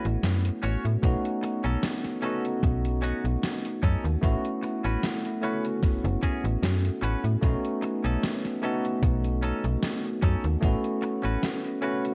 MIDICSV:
0, 0, Header, 1, 6, 480
1, 0, Start_track
1, 0, Tempo, 800000
1, 620, Time_signature, 4, 2, 24, 8
1, 7285, End_track
2, 0, Start_track
2, 0, Title_t, "Clean electric guitar"
2, 0, Program_c, 0, 27
2, 375, Note_on_c, 0, 61, 92
2, 379, Note_on_c, 0, 66, 84
2, 384, Note_on_c, 0, 73, 102
2, 506, Note_off_c, 0, 61, 0
2, 509, Note_off_c, 0, 66, 0
2, 511, Note_off_c, 0, 73, 0
2, 983, Note_on_c, 0, 61, 80
2, 986, Note_on_c, 0, 63, 71
2, 992, Note_on_c, 0, 69, 87
2, 1097, Note_off_c, 0, 61, 0
2, 1098, Note_off_c, 0, 63, 0
2, 1102, Note_off_c, 0, 69, 0
2, 1334, Note_on_c, 0, 61, 86
2, 1338, Note_on_c, 0, 63, 76
2, 1343, Note_on_c, 0, 69, 93
2, 1466, Note_off_c, 0, 61, 0
2, 1468, Note_off_c, 0, 63, 0
2, 1471, Note_off_c, 0, 69, 0
2, 1813, Note_on_c, 0, 61, 84
2, 1817, Note_on_c, 0, 63, 76
2, 1822, Note_on_c, 0, 66, 98
2, 1945, Note_off_c, 0, 61, 0
2, 1948, Note_off_c, 0, 63, 0
2, 1950, Note_off_c, 0, 66, 0
2, 2297, Note_on_c, 0, 61, 86
2, 2301, Note_on_c, 0, 63, 82
2, 2306, Note_on_c, 0, 69, 99
2, 2427, Note_off_c, 0, 61, 0
2, 2430, Note_off_c, 0, 63, 0
2, 2432, Note_off_c, 0, 69, 0
2, 2907, Note_on_c, 0, 61, 80
2, 2911, Note_on_c, 0, 66, 74
2, 2915, Note_on_c, 0, 71, 86
2, 3019, Note_off_c, 0, 61, 0
2, 3021, Note_off_c, 0, 66, 0
2, 3023, Note_off_c, 0, 71, 0
2, 3259, Note_on_c, 0, 61, 82
2, 3263, Note_on_c, 0, 66, 74
2, 3267, Note_on_c, 0, 71, 96
2, 3388, Note_off_c, 0, 61, 0
2, 3390, Note_off_c, 0, 66, 0
2, 3392, Note_off_c, 0, 71, 0
2, 3736, Note_on_c, 0, 61, 88
2, 3741, Note_on_c, 0, 66, 75
2, 3746, Note_on_c, 0, 68, 92
2, 3867, Note_off_c, 0, 61, 0
2, 3869, Note_off_c, 0, 66, 0
2, 3872, Note_off_c, 0, 68, 0
2, 4216, Note_on_c, 0, 61, 90
2, 4219, Note_on_c, 0, 66, 87
2, 4224, Note_on_c, 0, 71, 98
2, 4347, Note_off_c, 0, 61, 0
2, 4348, Note_off_c, 0, 66, 0
2, 4351, Note_off_c, 0, 71, 0
2, 4824, Note_on_c, 0, 61, 76
2, 4829, Note_on_c, 0, 63, 68
2, 4833, Note_on_c, 0, 69, 86
2, 4938, Note_off_c, 0, 61, 0
2, 4940, Note_off_c, 0, 63, 0
2, 4942, Note_off_c, 0, 69, 0
2, 5176, Note_on_c, 0, 61, 88
2, 5180, Note_on_c, 0, 63, 78
2, 5185, Note_on_c, 0, 69, 95
2, 5307, Note_off_c, 0, 61, 0
2, 5309, Note_off_c, 0, 63, 0
2, 5312, Note_off_c, 0, 69, 0
2, 5655, Note_on_c, 0, 61, 85
2, 5660, Note_on_c, 0, 63, 76
2, 5664, Note_on_c, 0, 69, 97
2, 5786, Note_off_c, 0, 61, 0
2, 5789, Note_off_c, 0, 63, 0
2, 5791, Note_off_c, 0, 69, 0
2, 6135, Note_on_c, 0, 61, 93
2, 6139, Note_on_c, 0, 63, 83
2, 6143, Note_on_c, 0, 69, 98
2, 6266, Note_off_c, 0, 61, 0
2, 6268, Note_off_c, 0, 63, 0
2, 6270, Note_off_c, 0, 69, 0
2, 6740, Note_on_c, 0, 61, 77
2, 6745, Note_on_c, 0, 66, 73
2, 6749, Note_on_c, 0, 71, 86
2, 6856, Note_off_c, 0, 61, 0
2, 6858, Note_off_c, 0, 66, 0
2, 6860, Note_off_c, 0, 71, 0
2, 7092, Note_on_c, 0, 61, 81
2, 7097, Note_on_c, 0, 66, 81
2, 7101, Note_on_c, 0, 71, 93
2, 7225, Note_off_c, 0, 61, 0
2, 7227, Note_off_c, 0, 66, 0
2, 7229, Note_off_c, 0, 71, 0
2, 7285, End_track
3, 0, Start_track
3, 0, Title_t, "Tine electric piano"
3, 0, Program_c, 1, 4
3, 0, Control_c, 1, 64, 127
3, 0, Note_on_c, 1, 57, 74
3, 0, Note_on_c, 1, 59, 69
3, 0, Note_on_c, 1, 61, 72
3, 0, Note_on_c, 1, 64, 72
3, 0, Note_on_c, 1, 66, 86
3, 588, Note_off_c, 1, 57, 0
3, 591, Note_off_c, 1, 59, 0
3, 592, Note_off_c, 1, 61, 0
3, 595, Note_off_c, 1, 64, 0
3, 597, Note_off_c, 1, 66, 0
3, 613, Note_on_c, 1, 57, 89
3, 617, Note_on_c, 1, 59, 80
3, 620, Note_on_c, 1, 61, 78
3, 626, Note_on_c, 1, 63, 78
3, 628, Control_c, 1, 64, 0
3, 630, Note_on_c, 1, 66, 101
3, 720, Control_c, 1, 64, 127
3, 1310, Note_off_c, 1, 57, 0
3, 1312, Note_off_c, 1, 59, 0
3, 1313, Note_off_c, 1, 61, 0
3, 1316, Note_off_c, 1, 63, 0
3, 1318, Note_off_c, 1, 66, 0
3, 1330, Note_on_c, 1, 57, 76
3, 1336, Note_on_c, 1, 59, 73
3, 1340, Note_on_c, 1, 61, 69
3, 1344, Note_on_c, 1, 63, 72
3, 1348, Note_on_c, 1, 66, 89
3, 2508, Note_off_c, 1, 57, 0
3, 2511, Note_off_c, 1, 59, 0
3, 2513, Note_off_c, 1, 61, 0
3, 2515, Note_off_c, 1, 63, 0
3, 2517, Note_off_c, 1, 66, 0
3, 2529, Note_on_c, 1, 57, 90
3, 2534, Note_on_c, 1, 59, 84
3, 2538, Note_on_c, 1, 61, 83
3, 2543, Note_on_c, 1, 64, 81
3, 2547, Control_c, 1, 64, 0
3, 2548, Note_on_c, 1, 66, 97
3, 2637, Control_c, 1, 64, 127
3, 3228, Note_off_c, 1, 57, 0
3, 3230, Note_off_c, 1, 59, 0
3, 3232, Note_off_c, 1, 61, 0
3, 3235, Note_off_c, 1, 64, 0
3, 3237, Note_off_c, 1, 66, 0
3, 3248, Note_on_c, 1, 57, 77
3, 3253, Note_on_c, 1, 59, 70
3, 3258, Note_on_c, 1, 61, 71
3, 3261, Note_on_c, 1, 64, 70
3, 3266, Note_on_c, 1, 66, 83
3, 4428, Note_off_c, 1, 57, 0
3, 4430, Note_off_c, 1, 59, 0
3, 4432, Note_off_c, 1, 61, 0
3, 4434, Note_off_c, 1, 64, 0
3, 4436, Note_off_c, 1, 66, 0
3, 4450, Note_on_c, 1, 57, 90
3, 4454, Note_on_c, 1, 59, 83
3, 4459, Note_on_c, 1, 61, 83
3, 4464, Note_on_c, 1, 63, 83
3, 4466, Control_c, 1, 64, 0
3, 4466, Note_on_c, 1, 66, 99
3, 4568, Control_c, 1, 64, 127
3, 5148, Note_off_c, 1, 57, 0
3, 5150, Note_off_c, 1, 59, 0
3, 5153, Note_off_c, 1, 61, 0
3, 5155, Note_off_c, 1, 63, 0
3, 5156, Note_off_c, 1, 66, 0
3, 5169, Note_on_c, 1, 57, 76
3, 5174, Note_on_c, 1, 59, 70
3, 5178, Note_on_c, 1, 61, 73
3, 5182, Note_on_c, 1, 63, 71
3, 5187, Note_on_c, 1, 66, 89
3, 6348, Note_off_c, 1, 57, 0
3, 6350, Note_off_c, 1, 59, 0
3, 6352, Note_off_c, 1, 61, 0
3, 6354, Note_off_c, 1, 63, 0
3, 6357, Note_off_c, 1, 66, 0
3, 6367, Note_on_c, 1, 57, 94
3, 6372, Note_on_c, 1, 59, 82
3, 6376, Note_on_c, 1, 61, 78
3, 6380, Note_on_c, 1, 64, 84
3, 6385, Note_on_c, 1, 66, 101
3, 6387, Control_c, 1, 64, 0
3, 6504, Control_c, 1, 64, 127
3, 7067, Note_off_c, 1, 57, 0
3, 7069, Note_off_c, 1, 59, 0
3, 7071, Note_off_c, 1, 61, 0
3, 7073, Note_off_c, 1, 64, 0
3, 7076, Note_off_c, 1, 66, 0
3, 7087, Note_on_c, 1, 57, 78
3, 7092, Note_on_c, 1, 59, 68
3, 7095, Note_on_c, 1, 61, 69
3, 7101, Note_on_c, 1, 64, 70
3, 7105, Note_on_c, 1, 66, 87
3, 7285, Note_off_c, 1, 57, 0
3, 7285, Note_off_c, 1, 59, 0
3, 7285, Note_off_c, 1, 61, 0
3, 7285, Note_off_c, 1, 64, 0
3, 7285, Note_off_c, 1, 66, 0
3, 7285, End_track
4, 0, Start_track
4, 0, Title_t, "FM bass"
4, 0, Program_c, 2, 39
4, 30, Note_on_c, 2, 33, 98
4, 103, Note_off_c, 2, 33, 0
4, 138, Note_on_c, 2, 42, 83
4, 305, Note_off_c, 2, 42, 0
4, 381, Note_on_c, 2, 33, 84
4, 460, Note_off_c, 2, 33, 0
4, 508, Note_on_c, 2, 45, 86
4, 582, Note_off_c, 2, 45, 0
4, 617, Note_on_c, 2, 35, 96
4, 698, Note_off_c, 2, 35, 0
4, 987, Note_on_c, 2, 35, 85
4, 1062, Note_off_c, 2, 35, 0
4, 1578, Note_on_c, 2, 35, 95
4, 1879, Note_off_c, 2, 35, 0
4, 1947, Note_on_c, 2, 35, 89
4, 2022, Note_off_c, 2, 35, 0
4, 2297, Note_on_c, 2, 42, 86
4, 2378, Note_off_c, 2, 42, 0
4, 2427, Note_on_c, 2, 39, 93
4, 2502, Note_off_c, 2, 39, 0
4, 2537, Note_on_c, 2, 33, 98
4, 2619, Note_off_c, 2, 33, 0
4, 2909, Note_on_c, 2, 33, 80
4, 2983, Note_off_c, 2, 33, 0
4, 3497, Note_on_c, 2, 30, 42
4, 3602, Note_off_c, 2, 30, 0
4, 3627, Note_on_c, 2, 30, 100
4, 3702, Note_off_c, 2, 30, 0
4, 3865, Note_on_c, 2, 33, 97
4, 3941, Note_off_c, 2, 33, 0
4, 3976, Note_on_c, 2, 42, 90
4, 4144, Note_off_c, 2, 42, 0
4, 4215, Note_on_c, 2, 33, 82
4, 4298, Note_off_c, 2, 33, 0
4, 4345, Note_on_c, 2, 45, 86
4, 4421, Note_off_c, 2, 45, 0
4, 4456, Note_on_c, 2, 35, 98
4, 4538, Note_off_c, 2, 35, 0
4, 4826, Note_on_c, 2, 35, 81
4, 4902, Note_off_c, 2, 35, 0
4, 5415, Note_on_c, 2, 35, 97
4, 5717, Note_off_c, 2, 35, 0
4, 5786, Note_on_c, 2, 35, 91
4, 5861, Note_off_c, 2, 35, 0
4, 6137, Note_on_c, 2, 42, 83
4, 6218, Note_off_c, 2, 42, 0
4, 6267, Note_on_c, 2, 39, 88
4, 6342, Note_off_c, 2, 39, 0
4, 6377, Note_on_c, 2, 33, 101
4, 6458, Note_off_c, 2, 33, 0
4, 6747, Note_on_c, 2, 33, 77
4, 6822, Note_off_c, 2, 33, 0
4, 7285, End_track
5, 0, Start_track
5, 0, Title_t, "Muted clean electric guitar strokes"
5, 856, Note_on_c, 9, 29, 83
5, 916, Note_off_c, 9, 29, 0
5, 2776, Note_on_c, 9, 29, 83
5, 2836, Note_off_c, 9, 29, 0
5, 4694, Note_on_c, 9, 29, 86
5, 4754, Note_off_c, 9, 29, 0
5, 6614, Note_on_c, 9, 29, 81
5, 6674, Note_off_c, 9, 29, 0
5, 7285, End_track
6, 0, Start_track
6, 0, Title_t, "Drums"
6, 29, Note_on_c, 9, 42, 40
6, 89, Note_off_c, 9, 42, 0
6, 140, Note_on_c, 9, 38, 117
6, 140, Note_on_c, 9, 42, 94
6, 200, Note_off_c, 9, 38, 0
6, 200, Note_off_c, 9, 42, 0
6, 269, Note_on_c, 9, 42, 43
6, 329, Note_off_c, 9, 42, 0
6, 380, Note_on_c, 9, 42, 67
6, 440, Note_off_c, 9, 42, 0
6, 511, Note_on_c, 9, 42, 37
6, 571, Note_off_c, 9, 42, 0
6, 618, Note_on_c, 9, 36, 109
6, 621, Note_on_c, 9, 42, 96
6, 678, Note_off_c, 9, 36, 0
6, 681, Note_off_c, 9, 42, 0
6, 750, Note_on_c, 9, 42, 39
6, 810, Note_off_c, 9, 42, 0
6, 861, Note_on_c, 9, 42, 69
6, 921, Note_off_c, 9, 42, 0
6, 990, Note_on_c, 9, 42, 39
6, 1050, Note_off_c, 9, 42, 0
6, 1099, Note_on_c, 9, 38, 124
6, 1099, Note_on_c, 9, 42, 96
6, 1159, Note_off_c, 9, 38, 0
6, 1159, Note_off_c, 9, 42, 0
6, 1228, Note_on_c, 9, 38, 36
6, 1228, Note_on_c, 9, 42, 38
6, 1288, Note_off_c, 9, 38, 0
6, 1288, Note_off_c, 9, 42, 0
6, 1341, Note_on_c, 9, 42, 35
6, 1401, Note_off_c, 9, 42, 0
6, 1470, Note_on_c, 9, 42, 42
6, 1530, Note_off_c, 9, 42, 0
6, 1578, Note_on_c, 9, 36, 119
6, 1580, Note_on_c, 9, 42, 89
6, 1638, Note_off_c, 9, 36, 0
6, 1640, Note_off_c, 9, 42, 0
6, 1710, Note_on_c, 9, 42, 40
6, 1770, Note_off_c, 9, 42, 0
6, 1823, Note_on_c, 9, 42, 71
6, 1883, Note_off_c, 9, 42, 0
6, 1951, Note_on_c, 9, 42, 40
6, 2011, Note_off_c, 9, 42, 0
6, 2060, Note_on_c, 9, 38, 123
6, 2060, Note_on_c, 9, 42, 94
6, 2120, Note_off_c, 9, 38, 0
6, 2120, Note_off_c, 9, 42, 0
6, 2190, Note_on_c, 9, 42, 43
6, 2250, Note_off_c, 9, 42, 0
6, 2298, Note_on_c, 9, 36, 101
6, 2302, Note_on_c, 9, 42, 69
6, 2358, Note_off_c, 9, 36, 0
6, 2362, Note_off_c, 9, 42, 0
6, 2432, Note_on_c, 9, 42, 39
6, 2492, Note_off_c, 9, 42, 0
6, 2538, Note_on_c, 9, 36, 120
6, 2542, Note_on_c, 9, 42, 94
6, 2598, Note_off_c, 9, 36, 0
6, 2602, Note_off_c, 9, 42, 0
6, 2669, Note_on_c, 9, 42, 42
6, 2729, Note_off_c, 9, 42, 0
6, 2781, Note_on_c, 9, 42, 69
6, 2841, Note_off_c, 9, 42, 0
6, 2910, Note_on_c, 9, 42, 39
6, 2970, Note_off_c, 9, 42, 0
6, 3021, Note_on_c, 9, 38, 120
6, 3021, Note_on_c, 9, 42, 87
6, 3081, Note_off_c, 9, 38, 0
6, 3081, Note_off_c, 9, 42, 0
6, 3151, Note_on_c, 9, 42, 39
6, 3211, Note_off_c, 9, 42, 0
6, 3261, Note_on_c, 9, 42, 37
6, 3321, Note_off_c, 9, 42, 0
6, 3390, Note_on_c, 9, 42, 43
6, 3450, Note_off_c, 9, 42, 0
6, 3498, Note_on_c, 9, 36, 118
6, 3502, Note_on_c, 9, 38, 36
6, 3502, Note_on_c, 9, 42, 85
6, 3558, Note_off_c, 9, 36, 0
6, 3562, Note_off_c, 9, 38, 0
6, 3562, Note_off_c, 9, 42, 0
6, 3630, Note_on_c, 9, 42, 38
6, 3690, Note_off_c, 9, 42, 0
6, 3737, Note_on_c, 9, 36, 60
6, 3739, Note_on_c, 9, 42, 70
6, 3797, Note_off_c, 9, 36, 0
6, 3799, Note_off_c, 9, 42, 0
6, 3870, Note_on_c, 9, 42, 40
6, 3930, Note_off_c, 9, 42, 0
6, 3981, Note_on_c, 9, 38, 122
6, 3981, Note_on_c, 9, 42, 93
6, 4041, Note_off_c, 9, 38, 0
6, 4041, Note_off_c, 9, 42, 0
6, 4110, Note_on_c, 9, 42, 42
6, 4170, Note_off_c, 9, 42, 0
6, 4221, Note_on_c, 9, 42, 65
6, 4281, Note_off_c, 9, 42, 0
6, 4348, Note_on_c, 9, 42, 37
6, 4408, Note_off_c, 9, 42, 0
6, 4457, Note_on_c, 9, 36, 114
6, 4459, Note_on_c, 9, 42, 90
6, 4517, Note_off_c, 9, 36, 0
6, 4519, Note_off_c, 9, 42, 0
6, 4589, Note_on_c, 9, 42, 39
6, 4649, Note_off_c, 9, 42, 0
6, 4700, Note_on_c, 9, 42, 66
6, 4759, Note_off_c, 9, 42, 0
6, 4827, Note_on_c, 9, 42, 36
6, 4887, Note_off_c, 9, 42, 0
6, 4939, Note_on_c, 9, 38, 119
6, 4939, Note_on_c, 9, 42, 86
6, 4999, Note_off_c, 9, 38, 0
6, 4999, Note_off_c, 9, 42, 0
6, 5067, Note_on_c, 9, 38, 36
6, 5067, Note_on_c, 9, 42, 35
6, 5127, Note_off_c, 9, 38, 0
6, 5127, Note_off_c, 9, 42, 0
6, 5179, Note_on_c, 9, 42, 35
6, 5239, Note_off_c, 9, 42, 0
6, 5309, Note_on_c, 9, 42, 41
6, 5369, Note_off_c, 9, 42, 0
6, 5417, Note_on_c, 9, 36, 116
6, 5418, Note_on_c, 9, 42, 83
6, 5477, Note_off_c, 9, 36, 0
6, 5478, Note_off_c, 9, 42, 0
6, 5547, Note_on_c, 9, 42, 35
6, 5607, Note_off_c, 9, 42, 0
6, 5657, Note_on_c, 9, 42, 66
6, 5717, Note_off_c, 9, 42, 0
6, 5786, Note_on_c, 9, 42, 38
6, 5846, Note_off_c, 9, 42, 0
6, 5897, Note_on_c, 9, 38, 127
6, 5897, Note_on_c, 9, 42, 92
6, 5957, Note_off_c, 9, 38, 0
6, 5957, Note_off_c, 9, 42, 0
6, 6028, Note_on_c, 9, 42, 40
6, 6088, Note_off_c, 9, 42, 0
6, 6137, Note_on_c, 9, 36, 102
6, 6138, Note_on_c, 9, 42, 64
6, 6197, Note_off_c, 9, 36, 0
6, 6198, Note_off_c, 9, 42, 0
6, 6266, Note_on_c, 9, 42, 39
6, 6326, Note_off_c, 9, 42, 0
6, 6377, Note_on_c, 9, 36, 111
6, 6377, Note_on_c, 9, 42, 87
6, 6437, Note_off_c, 9, 36, 0
6, 6437, Note_off_c, 9, 42, 0
6, 6506, Note_on_c, 9, 42, 37
6, 6566, Note_off_c, 9, 42, 0
6, 6618, Note_on_c, 9, 42, 62
6, 6678, Note_off_c, 9, 42, 0
6, 6747, Note_on_c, 9, 42, 36
6, 6807, Note_off_c, 9, 42, 0
6, 6858, Note_on_c, 9, 38, 114
6, 6858, Note_on_c, 9, 42, 86
6, 6918, Note_off_c, 9, 38, 0
6, 6918, Note_off_c, 9, 42, 0
6, 6987, Note_on_c, 9, 42, 37
6, 7047, Note_off_c, 9, 42, 0
6, 7099, Note_on_c, 9, 42, 36
6, 7159, Note_off_c, 9, 42, 0
6, 7230, Note_on_c, 9, 42, 40
6, 7285, Note_off_c, 9, 42, 0
6, 7285, End_track
0, 0, End_of_file